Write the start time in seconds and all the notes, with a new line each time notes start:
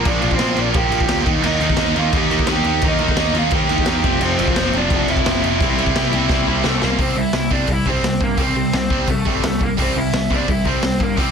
0.04 A#1 A#2 F3 A#3 D4, kick, crash
0.09 D5
0.21 A#1 A#2 F3 A#3, crash
0.31 C4, kick
0.36 A#1 A#2 C5, snare, crash
0.40 F3 A#3
0.57 A#1 A#2 F3 A#3 D4, crash
0.61 D5
0.74 A#1 A#2 F3 A#3 G4 G5, kick, crash
0.90 A#1 A#2 F3 A#3, crash
1.00 kick
1.08 D2 A#2 F3 A#3, snare, crash
1.25 D#2 D#3 A#3 D#4, kick, crash
1.42 D#2 D#3 A#3 D#4, crash
1.47 D#5
1.60 D#2 D#3 A#3 D#4, crash
1.70 D#4 D#5, kick
1.77 D#2 D#3 A#3 D#4, snare, crash
1.95 D#2 D#3 A#3 D#4 F4 F5, crash
2.13 D#2 D#3 A#3 D#4 G4, kick, crash
2.17 G5
2.31 D#2 D#3 A#3 D#4, crash
2.39 kick
2.47 D#2 D#3 A#3 D#4 G4, snare, crash
2.52 G5
2.63 D#2 D#3 A#3 D#4, crash
2.82 D#2 D#3 A#3 D#4, kick, crash
2.88 D#5
2.99 D#2 D#3 A#3 D#4, crash
3.08 D#4 D#5, kick
3.16 D#2 D#3 A#3 D#4, snare, crash
3.33 D#2 D#3 A#3 D#4 F4, crash
3.38 F5
3.51 D#2 D#3 A#3 D#4 G4, kick, crash
3.55 G5
3.69 D#2 D#3 A#3 D#4, crash
3.78 kick
3.86 E2 D#3 A#3 D#4 G4 G5, snare, crash
4.04 F1 F2 C3 F3, kick, crash
4.21 F1 F2 C3 F3 C4, crash
4.25 C5
4.38 F1 F2 C3 F3, crash
4.47 C4 C5, kick
4.55 F1 F2 C3 F3, snare, crash
4.72 F1 F2 C3 F3 D4, crash
4.78 D5
4.90 F1 F2 C3 F3, kick, crash
5.07 F1 F2 C3 F3 E4, crash
5.11 E5
5.17 kick
5.26 F1 F2 C3 F3, snare, crash
5.43 F1 F2 C3 F3 E4, crash
5.47 E5
5.60 C2 C3 G3 C4, kick, crash
5.77 C2 C3 G3 C4, crash
5.86 kick
5.95 C2 C3 G3 C4, snare, crash
6.12 C2 C3 G3 C4, crash
6.29 C2 C3 G3 C4, kick, snare
6.46 C2 C3 G3 C4
6.64 C2 C3 G3 A3 C4 A4, snare
6.82 C2 C3 G3 A#3 C4 A#4, snare
6.97 C2 C3 G3 C4, kick, open hi-hat
7.02 C5
7.16 C2 C3 G3 E4 E5
7.33 C2 C3 G3, snare, open hi-hat
7.50 C2 C3 G3 C4 D4 D5, kick
7.67 C2 C3 G3 E4, kick, open hi-hat
7.72 E5
7.86 C3 G3 C4 C5, kick
8.03 C2 C3 G3, snare, open hi-hat
8.21 G2 C3 G3 A#3 A#4, kick
8.37 C2 C3 G3 C4, kick, open hi-hat
8.41 C4 C5
8.56 C2 C3 G3
8.73 C2 C3 G3 C4 C5, snare, open hi-hat
8.90 C2 C3 G3 C4, kick
9.07 C2 C3 G3 A3 A4, kick, open hi-hat
9.25 G1 C3 G3 C4, kick
9.43 C2 C3 G3 A3, snare, open hi-hat
9.47 A4
9.59 C3 G3 A#3, kick
9.65 A#4
9.77 C2 C3 G3 C4, kick, open hi-hat
9.82 C5
9.95 C2 C3 G3 E4 E5
10.13 C2 C3 G3, snare, open hi-hat
10.30 C2 C3 G3 C4, kick
10.34 D4 D5
10.48 C2 C3 G3 E4 E5, kick, open hi-hat
10.65 C3 G3 C4 C5, kick
10.82 C2 C3 G3, snare, open hi-hat
11.00 G2 C3 G3 A#3 A#4, kick
11.17 C2 C3 G3 C4 C5, kick, open hi-hat